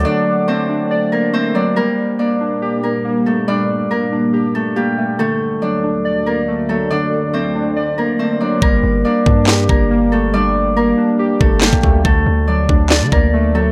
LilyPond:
<<
  \new Staff \with { instrumentName = "Harp" } { \time 4/4 \key g \minor \tempo 4 = 140 <d' d''>4 <c' c''>4 r8 <bes bes'>8 <c' c''>8 <d' d''>8 | <bes bes'>4 <d' d''>4. <bes bes'>4 <a a'>8 | <d' d''>4 <bes bes'>4. <a a'>8 <g g'>4 | <a a'>4 <d' d''>4. <bes bes'>4 <a a'>8 |
<d' d''>4 <c' c''>4 r8 <bes bes'>8 <c' c''>8 <d' d''>8 | <bes bes'>4 <d' d''>4. <bes bes'>4 <a a'>8 | <d' d''>4 <bes bes'>4. <a a'>8 <g g'>4 | <a a'>4 <d' d''>4. <bes bes'>4 <a a'>8 | }
  \new Staff \with { instrumentName = "Synth keys" } { \time 4/4 \key g \minor <d fis a d''>4 a8 d'8 d''4 a8 fis8 | g4 bes8 d'8 g'4 bes4 | g4 bes8 d'8 g'4 bes8 a8 | d4 fis8 d'8 d''4 a8 fis8 |
d4 a8 d'8 d''4 a8 fis8 | g4 bes8 d'8 g'4 bes4 | g4 bes8 d'8 g'4 bes8 a8 | d4 fis8 d'8 d''4 a8 fis8 | }
  \new Staff \with { instrumentName = "Ambient pad" } { \clef bass \time 4/4 \key g \minor <fis'' a'' d'''>1 | <bes, g bes>1~ | <bes, g bes>1 | <d, fis>1~ |
<d, fis>1 | r1 | r1 | r1 | }
  \new Staff \with { instrumentName = "808-style bass" } { \clef bass \time 4/4 \key g \minor r1 | r1 | r1 | r1 |
r1 | g,,8 g,,8 r8 g,4 g,,4.~ | g,,4. r4 g,,8. bes,,16 d,8 | d,8 d,4 d,8. d16 d,4. | }
  \new DrumStaff \with { instrumentName = "Drums" } \drummode { \time 4/4 r4 r4 r4 r4 | r4 r4 r4 r4 | r4 r4 r4 r4 | r4 r4 r4 r4 |
r4 r4 r4 r4 | bd4 r8 bd8 <hc sn>8 bd8 r4 | r4 r4 r8 bd8 <hc sn>16 bd16 bd8 | bd4 r8 bd8 <hc sn>8 bd8 r4 | }
>>